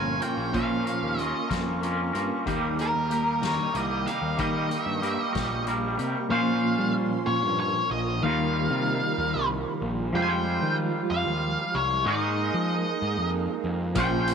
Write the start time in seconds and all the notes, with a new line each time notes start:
Already playing: G1 A#2 F3 A#3 C#4 F4 A#4 C#5 F5 G#5 C#6
0.22 A#3 C#4 F4 A#4 G5, closed hi-hat
0.37 A#1
0.53 A#2 F3 A#3 C#4 F4 A#4 F5, kick, closed hi-hat
0.86 A#3 C#4 F4 A#4, closed hi-hat
1.03 D#2
1.17 A#3 C#4 F4 A#4 D#5, closed hi-hat
1.49 F2 A#3 C#4 F4 A#4, kick, snare, closed hi-hat
1.81 A#3 C#4 F4 A#4, closed hi-hat
2.13 G2 A#3 C#4 F4 A#4, closed hi-hat
2.46 D#2 D#3 G3 A#3 G4 A#4 D#5 G5 D#6, kick, closed hi-hat
2.77 G3 G4 A#4, closed hi-hat
2.81 A#4
2.95 D#2
3.10 G3 A#3 G4 A#4, closed hi-hat
3.42 D#2 G3 G4 A#4 C#5, snare, closed hi-hat
3.74 C2 G3 A#3 G4 A#4 D#5, closed hi-hat
4.06 G3 G4 A#4 F5, closed hi-hat
4.22 D#2
4.37 D#3 G3 A#3 G4 A#4 D#5 C#6, kick, closed hi-hat
4.69 G3 G4 A#4, closed hi-hat
4.84 G2 E5
4.96 D#5
5.01 G3 A#3 G4 A#4, closed hi-hat
5.09 E5
5.21 D#5
5.33 A#1 G3 G4 A#4, kick, snare, closed hi-hat
5.65 G3 A#3 G4 A#4, closed hi-hat
5.97 C3 G3 G4 A#4, closed hi-hat
6.29 A#2 F3 A#3 C#4 F4 A#4 C5 F5 C6
6.79 G3
7.27 A#2 C#5
7.43 G2
7.60 C#5
7.90 A#1 D#5
8.22 D#2 D#3 F3 G3 A#3 D#4 F4 G4 A#4 F5
8.71 C3
9.18 D#2
9.34 C2
9.82 A#1
10.13 F2 F3 G3 G#3 F4 G4 C5 G5
10.22 G#5
10.30 G5
10.62 D#3
11.10 F2 F5
11.26 D#2
11.74 C2 C#5
12.04 G#2 G#3 A#3 D#4 G#4 A#4 D#5
12.54 F3
13.02 G#2
13.17 F2
13.64 F2
13.95 A#1 A#2 F3 A#3 C#4 F4 C5 G5, kick, closed hi-hat
14.28 closed hi-hat